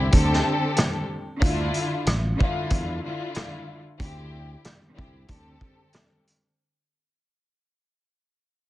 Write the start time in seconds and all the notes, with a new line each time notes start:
Already playing: C4 E4 G4
0.11 D2 D3 C4 G4 A4, kick, closed hi-hat
0.33 snare
0.77 cross-stick, snare, closed hi-hat
1.40 D2 D3 D4 E4 F4, kick, closed hi-hat
1.74 closed hi-hat
2.06 A1, cross-stick, snare, closed hi-hat
2.38 D3 D4 E4 F4, kick
2.70 E2, kick, closed hi-hat
3.03 D3 D4 E4 F4
3.35 cross-stick, snare, closed hi-hat
4.00 D2 D3 C4 E4 G4, kick, closed hi-hat
4.64 cross-stick, snare, closed hi-hat
4.95 D3 C4 E4 G4, kick
4.99 C2
5.27 D2 D3 C4 G4 A4, kick, closed hi-hat
5.61 kick
5.93 cross-stick, snare, closed hi-hat
6.27 closed hi-hat